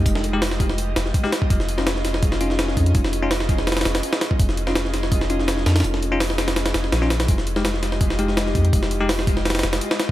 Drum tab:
HH |o---o---o---o---o---o---o---o---|o---o---o---o---o---o---o---o-x-|o---o---o---o---ooooo-o-o---o---|o---o---o---o---o---o---o---o-oo|
SD |--o-----o-o---o-----o-o---o-o---|--o---o-o-o-o-o---o---o-o-o-----|--o-----o-o---o-ooooo-o---o-o---|--o---o-o-o-o-o---o---o-o-o-o-oo|
BD |o-----------o-----------o-----o-|o---------------o-----------o---|o-----------o-----------------o-|o---------------o---------------|

HH |o---o---o---o-o-o-o-o---o---o-o-|o---o---o---o---o---o---o---o-x-|o---o---o---o---ooooo-o-o---o---|
SD |--o-----o-o-o-o-o-o-o-o-o-o-o-o-|--o---o-o-o-o-o---o---o-o-o-----|--o-----o-o---o-ooooo-o---o-o---|
BD |--------------------------------|o---------------o-----------o---|o-----------o-------------------|